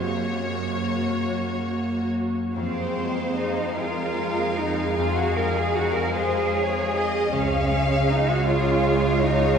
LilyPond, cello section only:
\new Staff \with { instrumentName = "Cello section" } { \time 6/8 \key f \phrygian \tempo 4. = 51 ges,2~ ges,8. r16 | c'4 ees'8 f'4 ees'8 | f'16 ges'16 bes'16 aes'16 ges'16 bes'16 aes'4. | des'4 ees'16 ges'16 f'4 ees'8 | }